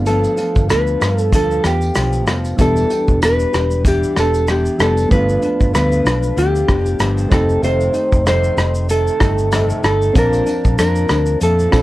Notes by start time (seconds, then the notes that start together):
Already playing: G1 A3 B3 D4 F4
0.06 G2 D3 F3 B3 F4 A4, closed hi-hat, tambourine, shaker
0.24 tambourine, shaker
0.37 F3 B3 F4, closed hi-hat, tambourine, shaker
0.55 G1, kick, tambourine, shaker
0.68 D2 D3 F3 B3 F4 B4, cross-stick, closed hi-hat, tambourine, shaker
0.87 shaker
1.00 G2 F3 B3 F4, cross-stick, closed hi-hat, tambourine, shaker
1.18 A4, shaker
1.32 D2 G2 D3 F3 B3 F4 A4, kick, closed hi-hat, tambourine, shaker
1.51 shaker
1.63 E2 B3 F4 G4, cross-stick, closed hi-hat, tambourine, shaker
1.81 tambourine, shaker
1.95 B1 D3 F3 B3, cross-stick, closed hi-hat, tambourine, shaker
1.99 F4
2.13 shaker
2.27 F1 F3 B3 F4, cross-stick, closed hi-hat, tambourine, shaker
2.45 tambourine, shaker
2.57 E1 E3 G3 B3 D4 G4, kick, closed hi-hat, tambourine, shaker
2.61 D4 A4
2.76 tambourine, shaker
2.90 B3 D4 G4, closed hi-hat, tambourine, shaker
3.08 E1, kick, shaker
3.21 E3 B3 D4 G4 B4, cross-stick, closed hi-hat, tambourine, shaker
3.39 shaker
3.52 E1 B3 D4 G4, cross-stick, closed hi-hat, tambourine, shaker
3.71 shaker
3.84 E3 B3 D4 G4, kick, closed hi-hat, tambourine, shaker
4.03 shaker
4.16 E1 B3 D4 G4 A4, cross-stick, closed hi-hat, tambourine, shaker
4.34 tambourine, shaker
4.48 E3 B3 D4 G4, cross-stick, closed hi-hat, tambourine, shaker
4.65 shaker
4.78 F1 E3 G3 B3 D4 G4 A4, cross-stick, closed hi-hat, tambourine, shaker
4.82 B3
4.97 tambourine, shaker
5.09 G1 G2 D3 F3 A3 B3 D4 B4, kick, closed hi-hat, shaker
5.13 B3 D4 F4
5.29 shaker
5.42 F3 B3 D4, closed hi-hat, shaker
5.60 G1, kick, shaker
5.73 D2 G2 D3 F3 B3 D4 B4, cross-stick, closed hi-hat, shaker
5.92 shaker
6.04 B1 F3 B3 D4, cross-stick, closed hi-hat, shaker
6.23 shaker
6.36 D2 D3 F3 B3 D4 G4, closed hi-hat, shaker
6.56 shaker
6.68 F1 F3 B3 D4, kick, cross-stick, closed hi-hat, shaker
6.86 shaker
6.99 G1 G2 D3 F3 B3 D4, cross-stick, closed hi-hat, shaker
7.18 shaker
7.29 F1 A3 C4 D#4, kick, cross-stick, closed hi-hat, shaker
7.33 D#3 G4 A4
7.49 shaker
7.62 F1 F2 C3 D#3 A3 D#4 C5, closed hi-hat, shaker
7.81 shaker
7.94 D#3 A3 D#4, closed hi-hat, shaker
8.13 F1, kick, shaker
8.26 F2 C3 D#3 A3 D#4 C5, cross-stick, closed hi-hat, shaker
8.44 shaker
8.57 F1 D#3 A3 D#4, cross-stick, closed hi-hat, shaker
8.75 shaker
8.88 C3 D#3 A3 D#4 A4, closed hi-hat, shaker
9.08 shaker
9.20 G1 D#3 A3 D#4, kick, cross-stick, closed hi-hat, shaker
9.38 shaker
9.52 F2 C3 D#3 A3 D#4, cross-stick, closed hi-hat, shaker
9.70 shaker
9.83 G1 D#3 A3 D#4 A4, cross-stick, closed hi-hat, shaker
10.02 shaker
10.13 A#1 A#2 F3 C4 D4 F4, kick, closed hi-hat, tambourine, shaker
10.18 A#4 A5
10.33 tambourine, shaker
10.46 F3 D4, closed hi-hat, tambourine, shaker
10.65 A#1, kick, shaker
10.78 F2 A#2 F3 D4 A#4, cross-stick, closed hi-hat, tambourine, shaker
10.96 shaker
11.09 D2 F3 D4, cross-stick, closed hi-hat, tambourine, shaker
11.26 shaker
11.40 F2 A#2 F3 A3 D4 A4, closed hi-hat, tambourine, shaker
11.59 shaker
11.71 A#1 A3 C4 D4 F4 A4, kick, cross-stick, closed hi-hat, tambourine, shaker
11.76 F3